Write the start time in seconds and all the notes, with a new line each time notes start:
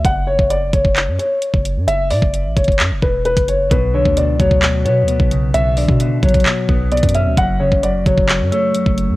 0.05 F#1 F#5, kick, closed hi-hat
0.27 C#5
0.39 F#1, kick
0.50 D5, closed hi-hat
0.73 F#1 C#5, kick, closed hi-hat
0.85 kick
0.96 clap, closed hi-hat
1.08 F#2
1.19 C#5, closed hi-hat
1.42 closed hi-hat
1.53 F#1, kick
1.65 closed hi-hat
1.76 F#2
1.88 F#1 E5, closed hi-hat
2.10 A2 D5, open hi-hat
2.22 F#1, kick
2.34 closed hi-hat
2.45 A1
2.56 F#1 C#5, kick, closed hi-hat
2.64 kick, closed hi-hat
2.72 closed hi-hat
2.79 F#2, clap, closed hi-hat
2.91 F#1
3.02 E1 B4, kick
3.25 B4, closed hi-hat
3.37 F#1, kick, closed hi-hat
3.48 C#5, closed hi-hat
3.71 B1 B2 B4, kick, closed hi-hat
3.94 D3 C#5
4.05 D2, kick
4.17 B2 D5, closed hi-hat
4.28 C#2
4.39 D2 F#3 C#5, kick, closed hi-hat
4.51 kick
4.63 B2, clap, closed hi-hat
4.85 B2 B3 C#5, closed hi-hat
5.03 D2
5.08 B2, closed hi-hat
5.20 B1, kick
5.31 C#3, closed hi-hat
5.54 B1 B2 E5, closed hi-hat
5.77 D3 D5, open hi-hat
5.89 B2, kick
6.00 B2, closed hi-hat
6.23 B1 F#3 C#5, kick, closed hi-hat
6.29 closed hi-hat
6.34 kick, closed hi-hat
6.40 closed hi-hat
6.45 B2, clap, closed hi-hat
6.69 B1 B3, kick
6.92 B2 D5, closed hi-hat
6.97 closed hi-hat
7.03 F#2, kick, closed hi-hat
7.09 closed hi-hat
7.15 C#4 E5, closed hi-hat
7.26 D2
7.37 F#1 F#2 F#5, kick, closed hi-hat
7.60 C#3 C#5
7.72 F#1, kick
7.83 F#2 D5, closed hi-hat
8.06 F#1 F#3 C#5, kick, closed hi-hat
8.18 kick
8.29 F#2, clap, closed hi-hat
8.40 F#2
8.52 A3 C#5, closed hi-hat
8.75 F#2, closed hi-hat
8.86 F#1, kick
8.98 closed hi-hat
9.09 F#2